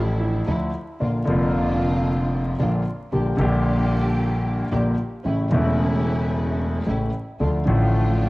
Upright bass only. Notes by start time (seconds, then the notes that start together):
Already playing: A1
0.47 D2
1.00 A#1
1.27 F1
2.59 A#1
3.12 A#1
3.38 A#1
4.71 A#1
5.25 A1
5.51 E1
6.86 A1
7.40 D2
7.67 A1